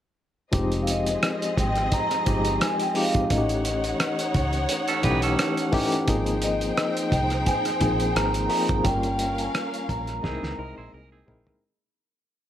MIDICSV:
0, 0, Header, 1, 7, 480
1, 0, Start_track
1, 0, Key_signature, -4, "minor"
1, 0, Tempo, 693642
1, 366, Time_signature, 4, 2, 24, 8
1, 8649, End_track
2, 0, Start_track
2, 0, Title_t, "Vibraphone"
2, 0, Program_c, 0, 11
2, 572, Note_on_c, 0, 77, 58
2, 611, Note_off_c, 0, 77, 0
2, 626, Note_on_c, 0, 75, 79
2, 1068, Note_off_c, 0, 75, 0
2, 1106, Note_on_c, 0, 79, 77
2, 1339, Note_on_c, 0, 82, 92
2, 1342, Note_off_c, 0, 79, 0
2, 1821, Note_on_c, 0, 80, 87
2, 1826, Note_off_c, 0, 82, 0
2, 1946, Note_off_c, 0, 80, 0
2, 1953, Note_on_c, 0, 79, 75
2, 2057, Note_off_c, 0, 79, 0
2, 2059, Note_on_c, 0, 77, 79
2, 2296, Note_on_c, 0, 75, 71
2, 2299, Note_off_c, 0, 77, 0
2, 2982, Note_off_c, 0, 75, 0
2, 4454, Note_on_c, 0, 75, 84
2, 4929, Note_on_c, 0, 79, 78
2, 4943, Note_off_c, 0, 75, 0
2, 5170, Note_on_c, 0, 80, 97
2, 5173, Note_off_c, 0, 79, 0
2, 5644, Note_on_c, 0, 82, 92
2, 5660, Note_off_c, 0, 80, 0
2, 5869, Note_off_c, 0, 82, 0
2, 5877, Note_on_c, 0, 82, 88
2, 6120, Note_on_c, 0, 79, 89
2, 6127, Note_off_c, 0, 82, 0
2, 6495, Note_on_c, 0, 80, 80
2, 6503, Note_off_c, 0, 79, 0
2, 6844, Note_on_c, 0, 82, 79
2, 6855, Note_off_c, 0, 80, 0
2, 7537, Note_off_c, 0, 82, 0
2, 8649, End_track
3, 0, Start_track
3, 0, Title_t, "String section"
3, 0, Program_c, 1, 48
3, 366, Note_on_c, 1, 68, 73
3, 366, Note_on_c, 1, 75, 86
3, 367, Note_on_c, 1, 60, 80
3, 2257, Note_off_c, 1, 68, 0
3, 2257, Note_off_c, 1, 75, 0
3, 2258, Note_off_c, 1, 60, 0
3, 2289, Note_on_c, 1, 78, 86
3, 2291, Note_on_c, 1, 63, 75
3, 2292, Note_on_c, 1, 73, 82
3, 4178, Note_off_c, 1, 78, 0
3, 4179, Note_off_c, 1, 63, 0
3, 4179, Note_off_c, 1, 73, 0
3, 4207, Note_on_c, 1, 72, 75
3, 4209, Note_on_c, 1, 63, 81
3, 4210, Note_on_c, 1, 79, 86
3, 6097, Note_off_c, 1, 72, 0
3, 6098, Note_off_c, 1, 63, 0
3, 6099, Note_off_c, 1, 79, 0
3, 6124, Note_on_c, 1, 70, 76
3, 6125, Note_on_c, 1, 61, 83
3, 6125, Note_on_c, 1, 77, 91
3, 7065, Note_off_c, 1, 70, 0
3, 7065, Note_off_c, 1, 77, 0
3, 7066, Note_off_c, 1, 61, 0
3, 7081, Note_on_c, 1, 68, 64
3, 7084, Note_on_c, 1, 58, 67
3, 7084, Note_on_c, 1, 75, 74
3, 8025, Note_off_c, 1, 68, 0
3, 8026, Note_off_c, 1, 58, 0
3, 8026, Note_off_c, 1, 75, 0
3, 8649, End_track
4, 0, Start_track
4, 0, Title_t, "Clean electric guitar"
4, 0, Program_c, 2, 27
4, 3380, Note_on_c, 2, 69, 60
4, 3383, Note_on_c, 2, 61, 50
4, 3482, Note_off_c, 2, 69, 0
4, 3483, Note_off_c, 2, 61, 0
4, 3492, Note_on_c, 2, 71, 70
4, 3496, Note_on_c, 2, 63, 60
4, 3611, Note_off_c, 2, 71, 0
4, 3613, Note_off_c, 2, 63, 0
4, 3620, Note_on_c, 2, 69, 67
4, 3625, Note_on_c, 2, 61, 52
4, 4179, Note_off_c, 2, 69, 0
4, 4181, Note_off_c, 2, 61, 0
4, 7089, Note_on_c, 2, 68, 58
4, 7093, Note_on_c, 2, 60, 52
4, 7315, Note_off_c, 2, 68, 0
4, 7317, Note_off_c, 2, 60, 0
4, 7328, Note_on_c, 2, 70, 68
4, 7449, Note_off_c, 2, 70, 0
4, 7458, Note_on_c, 2, 72, 65
4, 7463, Note_on_c, 2, 64, 57
4, 7561, Note_off_c, 2, 72, 0
4, 7564, Note_off_c, 2, 64, 0
4, 7571, Note_on_c, 2, 70, 62
4, 7691, Note_off_c, 2, 70, 0
4, 7696, Note_on_c, 2, 68, 56
4, 7701, Note_on_c, 2, 60, 46
4, 8029, Note_off_c, 2, 68, 0
4, 8031, Note_off_c, 2, 60, 0
4, 8649, End_track
5, 0, Start_track
5, 0, Title_t, "Tine electric piano"
5, 0, Program_c, 3, 4
5, 357, Note_on_c, 3, 53, 72
5, 362, Note_on_c, 3, 56, 63
5, 366, Note_on_c, 3, 60, 64
5, 370, Note_on_c, 3, 63, 65
5, 373, Note_on_c, 3, 67, 74
5, 508, Control_c, 3, 64, 127
5, 1000, Note_off_c, 3, 53, 0
5, 1002, Note_off_c, 3, 56, 0
5, 1004, Note_off_c, 3, 60, 0
5, 1006, Note_off_c, 3, 63, 0
5, 1008, Note_off_c, 3, 67, 0
5, 1560, Note_on_c, 3, 53, 54
5, 1564, Note_on_c, 3, 56, 55
5, 1568, Note_on_c, 3, 60, 52
5, 1570, Note_on_c, 3, 63, 54
5, 1576, Note_on_c, 3, 67, 66
5, 1884, Note_off_c, 3, 53, 0
5, 1886, Note_off_c, 3, 56, 0
5, 1888, Note_off_c, 3, 60, 0
5, 1889, Note_off_c, 3, 63, 0
5, 1892, Note_off_c, 3, 67, 0
5, 2037, Note_on_c, 3, 53, 63
5, 2040, Note_on_c, 3, 56, 62
5, 2045, Note_on_c, 3, 60, 57
5, 2048, Note_on_c, 3, 63, 58
5, 2052, Note_on_c, 3, 67, 71
5, 2205, Note_off_c, 3, 53, 0
5, 2207, Note_off_c, 3, 56, 0
5, 2209, Note_off_c, 3, 60, 0
5, 2211, Note_off_c, 3, 63, 0
5, 2213, Note_off_c, 3, 67, 0
5, 2274, Note_on_c, 3, 52, 58
5, 2282, Note_on_c, 3, 57, 58
5, 2284, Note_on_c, 3, 61, 57
5, 2287, Note_on_c, 3, 63, 54
5, 2293, Note_on_c, 3, 66, 55
5, 2294, Control_c, 3, 64, 0
5, 2337, Note_off_c, 3, 66, 0
5, 2338, Note_on_c, 3, 67, 63
5, 2415, Control_c, 3, 64, 127
5, 2917, Note_off_c, 3, 52, 0
5, 2921, Note_off_c, 3, 57, 0
5, 2922, Note_off_c, 3, 61, 0
5, 2924, Note_off_c, 3, 63, 0
5, 2949, Note_off_c, 3, 67, 0
5, 3475, Note_on_c, 3, 52, 69
5, 3480, Note_on_c, 3, 57, 63
5, 3483, Note_on_c, 3, 61, 64
5, 3485, Note_on_c, 3, 63, 61
5, 3489, Note_on_c, 3, 67, 78
5, 3801, Note_off_c, 3, 52, 0
5, 3803, Note_off_c, 3, 57, 0
5, 3805, Note_off_c, 3, 61, 0
5, 3806, Note_off_c, 3, 63, 0
5, 3807, Note_off_c, 3, 67, 0
5, 3955, Note_on_c, 3, 52, 79
5, 3959, Note_on_c, 3, 57, 72
5, 3964, Note_on_c, 3, 61, 73
5, 3967, Note_on_c, 3, 63, 69
5, 3971, Note_on_c, 3, 67, 90
5, 4124, Note_off_c, 3, 52, 0
5, 4125, Note_off_c, 3, 57, 0
5, 4128, Note_off_c, 3, 61, 0
5, 4129, Note_off_c, 3, 63, 0
5, 4131, Note_off_c, 3, 67, 0
5, 4198, Note_on_c, 3, 53, 78
5, 4202, Note_on_c, 3, 58, 68
5, 4206, Note_on_c, 3, 60, 72
5, 4209, Note_on_c, 3, 63, 66
5, 4211, Control_c, 3, 64, 0
5, 4213, Note_on_c, 3, 68, 83
5, 4328, Control_c, 3, 64, 127
5, 4838, Note_off_c, 3, 53, 0
5, 4841, Note_off_c, 3, 58, 0
5, 4842, Note_off_c, 3, 60, 0
5, 4844, Note_off_c, 3, 63, 0
5, 4846, Note_off_c, 3, 68, 0
5, 5396, Note_on_c, 3, 53, 60
5, 5398, Note_on_c, 3, 58, 57
5, 5402, Note_on_c, 3, 60, 56
5, 5407, Note_on_c, 3, 63, 55
5, 5411, Note_on_c, 3, 68, 67
5, 5721, Note_off_c, 3, 53, 0
5, 5722, Note_off_c, 3, 58, 0
5, 5724, Note_off_c, 3, 60, 0
5, 5726, Note_off_c, 3, 63, 0
5, 5729, Note_off_c, 3, 68, 0
5, 5873, Note_on_c, 3, 53, 65
5, 5875, Note_on_c, 3, 58, 59
5, 5880, Note_on_c, 3, 60, 60
5, 5883, Note_on_c, 3, 63, 61
5, 5887, Note_on_c, 3, 68, 74
5, 6042, Note_off_c, 3, 53, 0
5, 6043, Note_off_c, 3, 58, 0
5, 6046, Note_off_c, 3, 60, 0
5, 6047, Note_off_c, 3, 63, 0
5, 6049, Note_off_c, 3, 68, 0
5, 6112, Note_on_c, 3, 55, 66
5, 6117, Note_on_c, 3, 58, 58
5, 6119, Note_on_c, 3, 61, 56
5, 6124, Note_on_c, 3, 65, 59
5, 6127, Note_on_c, 3, 70, 71
5, 6132, Control_c, 3, 64, 0
5, 6249, Control_c, 3, 64, 127
5, 6756, Note_off_c, 3, 55, 0
5, 6758, Note_off_c, 3, 58, 0
5, 6760, Note_off_c, 3, 61, 0
5, 6762, Note_off_c, 3, 65, 0
5, 6763, Note_off_c, 3, 70, 0
5, 7076, Note_on_c, 3, 56, 69
5, 7079, Note_on_c, 3, 60, 65
5, 7082, Note_on_c, 3, 63, 65
5, 7086, Note_on_c, 3, 64, 64
5, 7091, Control_c, 3, 64, 0
5, 7092, Note_on_c, 3, 70, 78
5, 7196, Control_c, 3, 64, 127
5, 7276, Note_off_c, 3, 56, 0
5, 7277, Note_off_c, 3, 60, 0
5, 7279, Note_off_c, 3, 63, 0
5, 7281, Note_off_c, 3, 64, 0
5, 7284, Note_off_c, 3, 70, 0
5, 7319, Note_on_c, 3, 56, 56
5, 7322, Note_on_c, 3, 60, 54
5, 7326, Note_on_c, 3, 63, 53
5, 7329, Note_on_c, 3, 64, 52
5, 7335, Note_on_c, 3, 70, 60
5, 7644, Note_off_c, 3, 56, 0
5, 7645, Note_off_c, 3, 60, 0
5, 7647, Note_off_c, 3, 63, 0
5, 7649, Note_off_c, 3, 64, 0
5, 7651, Note_off_c, 3, 70, 0
5, 7793, Note_on_c, 3, 56, 74
5, 7798, Note_on_c, 3, 60, 66
5, 7804, Note_on_c, 3, 63, 68
5, 7805, Note_on_c, 3, 64, 71
5, 7810, Note_on_c, 3, 70, 82
5, 7963, Note_off_c, 3, 56, 0
5, 7966, Note_off_c, 3, 60, 0
5, 7969, Note_off_c, 3, 63, 0
5, 7970, Note_off_c, 3, 64, 0
5, 7972, Note_off_c, 3, 70, 0
5, 8056, Control_c, 3, 64, 0
5, 8649, End_track
6, 0, Start_track
6, 0, Title_t, "Fingered electric bass"
6, 0, Program_c, 4, 33
6, 371, Note_on_c, 4, 29, 87
6, 800, Note_off_c, 4, 29, 0
6, 1091, Note_on_c, 4, 32, 72
6, 1304, Note_off_c, 4, 32, 0
6, 1571, Note_on_c, 4, 31, 81
6, 1784, Note_off_c, 4, 31, 0
6, 2288, Note_on_c, 4, 33, 83
6, 2717, Note_off_c, 4, 33, 0
6, 3010, Note_on_c, 4, 37, 81
6, 3223, Note_off_c, 4, 37, 0
6, 3489, Note_on_c, 4, 35, 86
6, 3702, Note_off_c, 4, 35, 0
6, 4209, Note_on_c, 4, 32, 85
6, 4637, Note_off_c, 4, 32, 0
6, 4929, Note_on_c, 4, 36, 78
6, 5142, Note_off_c, 4, 36, 0
6, 5407, Note_on_c, 4, 34, 85
6, 5621, Note_off_c, 4, 34, 0
6, 5644, Note_on_c, 4, 32, 90
6, 5859, Note_off_c, 4, 32, 0
6, 6016, Note_on_c, 4, 32, 69
6, 6114, Note_off_c, 4, 32, 0
6, 6126, Note_on_c, 4, 31, 99
6, 6556, Note_off_c, 4, 31, 0
6, 6846, Note_on_c, 4, 34, 78
6, 7061, Note_off_c, 4, 34, 0
6, 7087, Note_on_c, 4, 36, 85
6, 7202, Note_off_c, 4, 36, 0
6, 7215, Note_on_c, 4, 37, 75
6, 7314, Note_off_c, 4, 37, 0
6, 7324, Note_on_c, 4, 36, 77
6, 7440, Note_off_c, 4, 36, 0
6, 7460, Note_on_c, 4, 34, 72
6, 7556, Note_off_c, 4, 34, 0
6, 7566, Note_on_c, 4, 36, 75
6, 7781, Note_off_c, 4, 36, 0
6, 7803, Note_on_c, 4, 34, 76
6, 7920, Note_off_c, 4, 34, 0
6, 8649, End_track
7, 0, Start_track
7, 0, Title_t, "Drums"
7, 364, Note_on_c, 9, 42, 103
7, 368, Note_on_c, 9, 36, 102
7, 434, Note_off_c, 9, 42, 0
7, 437, Note_off_c, 9, 36, 0
7, 496, Note_on_c, 9, 42, 41
7, 565, Note_off_c, 9, 42, 0
7, 604, Note_on_c, 9, 42, 67
7, 673, Note_off_c, 9, 42, 0
7, 737, Note_on_c, 9, 42, 42
7, 806, Note_off_c, 9, 42, 0
7, 849, Note_on_c, 9, 42, 74
7, 850, Note_on_c, 9, 37, 93
7, 918, Note_off_c, 9, 42, 0
7, 919, Note_off_c, 9, 37, 0
7, 984, Note_on_c, 9, 42, 48
7, 1054, Note_off_c, 9, 42, 0
7, 1090, Note_on_c, 9, 36, 74
7, 1093, Note_on_c, 9, 42, 76
7, 1159, Note_off_c, 9, 36, 0
7, 1162, Note_off_c, 9, 42, 0
7, 1214, Note_on_c, 9, 42, 35
7, 1224, Note_on_c, 9, 37, 29
7, 1283, Note_off_c, 9, 42, 0
7, 1293, Note_off_c, 9, 37, 0
7, 1327, Note_on_c, 9, 42, 78
7, 1330, Note_on_c, 9, 36, 74
7, 1396, Note_off_c, 9, 42, 0
7, 1399, Note_off_c, 9, 36, 0
7, 1459, Note_on_c, 9, 42, 42
7, 1462, Note_on_c, 9, 37, 29
7, 1528, Note_off_c, 9, 42, 0
7, 1531, Note_off_c, 9, 37, 0
7, 1566, Note_on_c, 9, 42, 68
7, 1570, Note_on_c, 9, 36, 82
7, 1635, Note_off_c, 9, 42, 0
7, 1639, Note_off_c, 9, 36, 0
7, 1692, Note_on_c, 9, 42, 47
7, 1762, Note_off_c, 9, 42, 0
7, 1807, Note_on_c, 9, 42, 84
7, 1810, Note_on_c, 9, 37, 98
7, 1876, Note_off_c, 9, 42, 0
7, 1879, Note_off_c, 9, 37, 0
7, 1934, Note_on_c, 9, 42, 50
7, 2003, Note_off_c, 9, 42, 0
7, 2041, Note_on_c, 9, 46, 74
7, 2110, Note_off_c, 9, 46, 0
7, 2175, Note_on_c, 9, 42, 44
7, 2179, Note_on_c, 9, 36, 86
7, 2244, Note_off_c, 9, 42, 0
7, 2248, Note_off_c, 9, 36, 0
7, 2285, Note_on_c, 9, 42, 99
7, 2288, Note_on_c, 9, 36, 99
7, 2355, Note_off_c, 9, 42, 0
7, 2357, Note_off_c, 9, 36, 0
7, 2417, Note_on_c, 9, 42, 43
7, 2486, Note_off_c, 9, 42, 0
7, 2525, Note_on_c, 9, 42, 64
7, 2594, Note_off_c, 9, 42, 0
7, 2656, Note_on_c, 9, 42, 43
7, 2725, Note_off_c, 9, 42, 0
7, 2767, Note_on_c, 9, 42, 74
7, 2768, Note_on_c, 9, 37, 97
7, 2836, Note_off_c, 9, 42, 0
7, 2838, Note_off_c, 9, 37, 0
7, 2898, Note_on_c, 9, 42, 49
7, 2968, Note_off_c, 9, 42, 0
7, 3006, Note_on_c, 9, 42, 71
7, 3008, Note_on_c, 9, 36, 76
7, 3075, Note_off_c, 9, 42, 0
7, 3077, Note_off_c, 9, 36, 0
7, 3133, Note_on_c, 9, 42, 35
7, 3202, Note_off_c, 9, 42, 0
7, 3244, Note_on_c, 9, 42, 82
7, 3313, Note_off_c, 9, 42, 0
7, 3374, Note_on_c, 9, 42, 42
7, 3444, Note_off_c, 9, 42, 0
7, 3482, Note_on_c, 9, 42, 72
7, 3489, Note_on_c, 9, 36, 82
7, 3551, Note_off_c, 9, 42, 0
7, 3558, Note_off_c, 9, 36, 0
7, 3614, Note_on_c, 9, 42, 47
7, 3683, Note_off_c, 9, 42, 0
7, 3728, Note_on_c, 9, 42, 84
7, 3731, Note_on_c, 9, 37, 99
7, 3798, Note_off_c, 9, 42, 0
7, 3800, Note_off_c, 9, 37, 0
7, 3857, Note_on_c, 9, 42, 49
7, 3926, Note_off_c, 9, 42, 0
7, 3962, Note_on_c, 9, 46, 78
7, 3965, Note_on_c, 9, 36, 89
7, 4031, Note_off_c, 9, 46, 0
7, 4034, Note_off_c, 9, 36, 0
7, 4098, Note_on_c, 9, 42, 46
7, 4167, Note_off_c, 9, 42, 0
7, 4205, Note_on_c, 9, 42, 102
7, 4207, Note_on_c, 9, 36, 105
7, 4274, Note_off_c, 9, 42, 0
7, 4276, Note_off_c, 9, 36, 0
7, 4334, Note_on_c, 9, 42, 44
7, 4403, Note_off_c, 9, 42, 0
7, 4440, Note_on_c, 9, 42, 68
7, 4509, Note_off_c, 9, 42, 0
7, 4575, Note_on_c, 9, 42, 41
7, 4644, Note_off_c, 9, 42, 0
7, 4688, Note_on_c, 9, 42, 77
7, 4689, Note_on_c, 9, 37, 98
7, 4757, Note_off_c, 9, 42, 0
7, 4758, Note_off_c, 9, 37, 0
7, 4821, Note_on_c, 9, 42, 49
7, 4890, Note_off_c, 9, 42, 0
7, 4927, Note_on_c, 9, 36, 78
7, 4927, Note_on_c, 9, 42, 77
7, 4996, Note_off_c, 9, 36, 0
7, 4997, Note_off_c, 9, 42, 0
7, 5053, Note_on_c, 9, 42, 33
7, 5063, Note_on_c, 9, 37, 28
7, 5122, Note_off_c, 9, 42, 0
7, 5132, Note_off_c, 9, 37, 0
7, 5165, Note_on_c, 9, 42, 82
7, 5168, Note_on_c, 9, 36, 75
7, 5234, Note_off_c, 9, 42, 0
7, 5237, Note_off_c, 9, 36, 0
7, 5295, Note_on_c, 9, 42, 46
7, 5297, Note_on_c, 9, 37, 30
7, 5364, Note_off_c, 9, 42, 0
7, 5367, Note_off_c, 9, 37, 0
7, 5402, Note_on_c, 9, 42, 70
7, 5407, Note_on_c, 9, 36, 89
7, 5471, Note_off_c, 9, 42, 0
7, 5476, Note_off_c, 9, 36, 0
7, 5534, Note_on_c, 9, 42, 46
7, 5604, Note_off_c, 9, 42, 0
7, 5649, Note_on_c, 9, 42, 85
7, 5651, Note_on_c, 9, 37, 104
7, 5718, Note_off_c, 9, 42, 0
7, 5721, Note_off_c, 9, 37, 0
7, 5772, Note_on_c, 9, 42, 52
7, 5841, Note_off_c, 9, 42, 0
7, 5879, Note_on_c, 9, 46, 72
7, 5948, Note_off_c, 9, 46, 0
7, 6014, Note_on_c, 9, 42, 44
7, 6016, Note_on_c, 9, 36, 86
7, 6083, Note_off_c, 9, 42, 0
7, 6085, Note_off_c, 9, 36, 0
7, 6122, Note_on_c, 9, 42, 101
7, 6123, Note_on_c, 9, 36, 109
7, 6191, Note_off_c, 9, 42, 0
7, 6193, Note_off_c, 9, 36, 0
7, 6251, Note_on_c, 9, 42, 43
7, 6320, Note_off_c, 9, 42, 0
7, 6359, Note_on_c, 9, 42, 69
7, 6428, Note_off_c, 9, 42, 0
7, 6493, Note_on_c, 9, 42, 43
7, 6562, Note_off_c, 9, 42, 0
7, 6606, Note_on_c, 9, 42, 75
7, 6608, Note_on_c, 9, 37, 103
7, 6676, Note_off_c, 9, 42, 0
7, 6677, Note_off_c, 9, 37, 0
7, 6738, Note_on_c, 9, 42, 45
7, 6807, Note_off_c, 9, 42, 0
7, 6845, Note_on_c, 9, 36, 75
7, 6846, Note_on_c, 9, 42, 70
7, 6914, Note_off_c, 9, 36, 0
7, 6916, Note_off_c, 9, 42, 0
7, 6971, Note_on_c, 9, 42, 35
7, 6981, Note_on_c, 9, 37, 29
7, 7040, Note_off_c, 9, 42, 0
7, 7050, Note_off_c, 9, 37, 0
7, 7086, Note_on_c, 9, 36, 74
7, 7090, Note_on_c, 9, 38, 49
7, 7155, Note_off_c, 9, 36, 0
7, 7159, Note_off_c, 9, 38, 0
7, 7220, Note_on_c, 9, 38, 46
7, 7289, Note_off_c, 9, 38, 0
7, 7806, Note_on_c, 9, 43, 77
7, 7875, Note_off_c, 9, 43, 0
7, 7935, Note_on_c, 9, 43, 71
7, 8004, Note_off_c, 9, 43, 0
7, 8649, End_track
0, 0, End_of_file